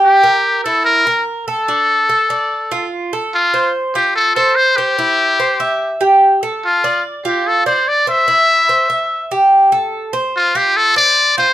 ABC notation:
X:1
M:4/4
L:1/8
Q:1/4=146
K:F
V:1 name="Cuban tres"
G B2 E2 B2 A | D2 A d2 F2 A- | A c2 F2 c2 c | E2 c e2 G2 A- |
A d2 F2 d2 c | E2 c e2 G2 A- | A c2 F2 c2 F |]
V:2 name="Muted trumpet"
G3 A B2 z A- | A6 z2 | F2 z G A A c G- | G4- G z3 |
F2 z G A c d e- | e4- e z3 | z2 F G A d2 c |]